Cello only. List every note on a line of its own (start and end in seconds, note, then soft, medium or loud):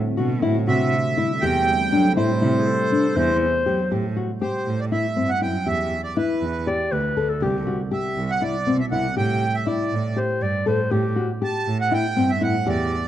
0.18 0.44 B2 medium
0.42 0.54 A2 medium
0.67 0.90 C3 medium
1.42 1.65 E2 medium
1.92 2.18 F#3 medium
2.17 2.28 A2 medium
2.42 2.65 C3 medium
3.17 3.40 E2 medium
3.67 3.78 F#3 medium
3.91 4.14 A2 medium
4.66 4.89 A2 medium
5.16 5.28 G2 medium
5.42 5.53 F#2 medium
5.67 5.90 E2 medium
6.42 6.65 E2 medium
6.92 7.03 D2 medium
7.17 7.28 D2 medium
7.42 7.65 C2 medium
8.17 8.40 C2 medium
8.67 8.79 B2 medium
8.92 9.03 C2 medium
9.16 9.40 A2 medium
9.92 10.15 A2 medium
10.42 10.53 G2 medium
10.67 10.78 A2 medium
10.92 11.15 A2 medium
11.66 11.89 A2 medium
12.16 12.28 G2 medium
12.41 12.53 A2 medium
12.66 12.89 E2 medium